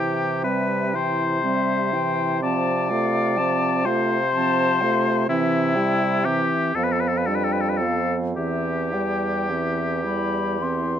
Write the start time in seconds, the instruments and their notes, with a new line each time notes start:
Already playing: bassoon C3, french horn E3, clarinet E4, oboe G4, flute G5
0.44 french horn G3, clarinet C4, oboe B4, flute E5
0.94 french horn E3, clarinet E4, oboe C5, flute G5
1.43 french horn G3, clarinet C4, flute E5
1.93 french horn E3, clarinet E4, flute G5
2.42 french horn F3, clarinet C4, oboe D5, flute A5
2.89 french horn A3, clarinet F4, flute F5
3.37 french horn F3, clarinet C4, flute A5
3.85 french horn A3, clarinet F4, oboe C5, flute F5
4.33 french horn F3, clarinet C4, flute A5
4.81 french horn A3, clarinet F4, flute F5
5.28 bassoon C3, french horn E3, clarinet C4, oboe E4, flute E5
5.75 french horn G3, clarinet E4, flute G5
6.24 french horn E3, clarinet C4, oboe G4, flute E5
6.75 bassoon F2, french horn F3, clarinet B3, oboe A4, flute F5
6.83 oboe B4
6.92 oboe A4
7.00 oboe B4
7.08 oboe A4
7.17 oboe B4
7.26 french horn G3, clarinet D4, oboe A4, flute G5
7.35 oboe B4
7.44 oboe A4
7.52 oboe B4
7.61 oboe A4
7.69 oboe B4
7.77 french horn F3, clarinet B3, oboe A4
7.82 flute F5
8.36 bassoon E2, french horn E3, clarinet C4, oboe G4, flute E5
8.92 french horn G3, clarinet E4, flute G5
9.50 french horn E3, clarinet C4, flute E5
10.05 french horn G3, clarinet E4, flute B5
10.61 french horn E3, clarinet C4, flute C6